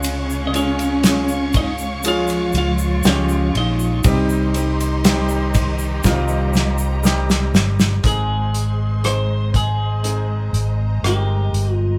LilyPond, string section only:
\new Staff \with { instrumentName = "String section" } { \time 4/4 \key aes \major \tempo 4 = 60 << { des'''1 | c'''2 bes''2 | c'''2 bes''2 | } \\ { <aes des'' f''>1 | <g' c'' ees''>1 | <aes c'' ees''>1 | } >> }